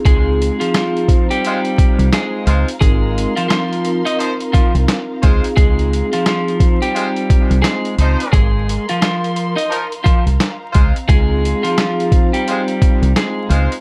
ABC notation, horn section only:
X:1
M:4/4
L:1/16
Q:"Swing 16ths" 1/4=87
K:Dblyd
V:1 name="Horn section"
z8 [A,Fc] z4 z [A,Fc]2 | z8 [F,Ec] z4 z [A,Fc]2 | z8 [A,Fc] z4 z [F,Ec]2- | [F,Ec] z6 z [F,EB] z4 z [A,Fc]2 |
z8 [A,Fc] z4 z [A,Fc]2 |]